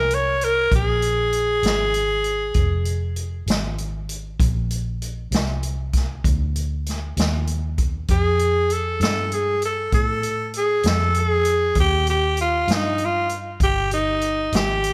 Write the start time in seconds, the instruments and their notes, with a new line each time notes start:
Already playing: fingered electric bass C2, tenor saxophone A#4
0.11 tenor saxophone C#5, closed hi-hat
0.41 tenor saxophone A#4, closed hi-hat
0.71 fingered electric bass A#1, kick, closed hi-hat
0.76 tenor saxophone G#4
1.02 closed hi-hat
1.33 closed hi-hat
1.63 fingered electric bass G#1, snare, closed hi-hat
1.94 closed hi-hat
2.24 closed hi-hat
2.54 fingered electric bass F1, kick, closed hi-hat
2.85 closed hi-hat
3.16 closed hi-hat
3.46 fingered electric bass G#1, snare, closed hi-hat
3.78 closed hi-hat
4.09 closed hi-hat
4.40 fingered electric bass A#1, kick, closed hi-hat
4.70 closed hi-hat
5.02 closed hi-hat
5.31 fingered electric bass C2, snare, closed hi-hat
5.63 closed hi-hat
5.93 kick, snare, closed hi-hat
6.24 fingered electric bass D2, kick, closed hi-hat
6.56 closed hi-hat
6.86 snare, closed hi-hat
7.17 fingered electric bass D#2, snare, closed hi-hat
7.47 closed hi-hat
7.78 kick, closed hi-hat
8.08 fingered electric bass F2, tenor saxophone G#4, kick, closed hi-hat
8.39 closed hi-hat
8.70 tenor saxophone A4, closed hi-hat
9.00 fingered electric bass G2, tenor saxophone A4, snare, closed hi-hat
9.32 tenor saxophone G#4, closed hi-hat
9.62 tenor saxophone A4, closed hi-hat
9.92 fingered electric bass A2, tenor saxophone A4, kick, closed hi-hat
10.23 closed hi-hat
10.54 closed hi-hat
10.58 tenor saxophone G#4
10.83 fingered electric bass F2, snare, closed hi-hat
10.87 tenor saxophone A4
11.14 closed hi-hat
11.19 tenor saxophone G#4
11.45 closed hi-hat
11.75 fingered electric bass D#2, kick, closed hi-hat
11.80 tenor saxophone G4
12.07 tenor saxophone G4, closed hi-hat
12.37 closed hi-hat
12.41 tenor saxophone F4
12.68 fingered electric bass G2, snare, closed hi-hat
12.72 tenor saxophone D#4
12.98 closed hi-hat
13.05 tenor saxophone F4
13.29 closed hi-hat
13.60 fingered electric bass G1, tenor saxophone G4, kick, closed hi-hat
13.91 tenor saxophone D#4, closed hi-hat
14.21 closed hi-hat
14.52 fingered electric bass G#1, tenor saxophone G4, snare, closed hi-hat
14.84 closed hi-hat